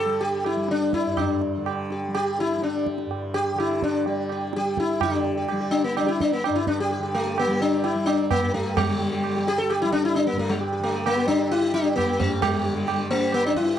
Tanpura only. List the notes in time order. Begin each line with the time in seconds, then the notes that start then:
Already playing: G2 D3 G3
0.06 G3
0.56 G3
1.06 G2
1.57 D3
2.08 G3
2.57 G3
3.06 G2
3.54 D3
4.06 G3
4.55 G3
5.03 D3
5.52 G3
6.02 G3
6.49 G2
6.98 D3
7.47 G3
7.95 G3
8.43 G2
8.89 D3
9.37 G3
9.84 G3
10.32 G2
10.79 D3
11.26 G3
11.73 G3
12.21 G2
12.68 D3
13.13 G3
13.59 G3